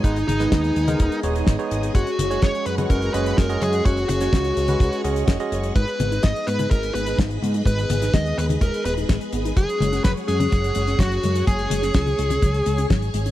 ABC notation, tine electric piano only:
X:1
M:4/4
L:1/16
Q:1/4=126
K:F#mix
V:1 name="Tine electric piano"
[G,B,DB] z2 [G,B,DB]4 [G,B,DA]3 [G,B,Dc]3 [G,B,Dc]3 | [G,CFc] z2 [G,CFc]4 [G,CFB]3 [G,CFd]3 [G,CFd]3 | [G,CFc] z2 [G,CFc]4 [G,CFB]3 [G,CFd]3 [G,CFd]3 | z16 |
z16 | z16 | z16 |]